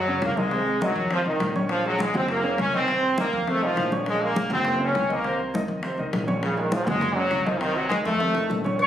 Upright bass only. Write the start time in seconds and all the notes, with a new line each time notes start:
Already playing: F#2
0.22 C2
0.96 F2
1.25 C2
1.40 A#1
2.14 F#1
2.58 C2
3.33 F2
3.61 C2
3.76 A#1
4.50 F#1
4.95 C2
5.68 F2
5.98 C2
6.13 A#1
6.87 F#1
7.32 C2
8.06 F2
8.35 C2
8.50 A#1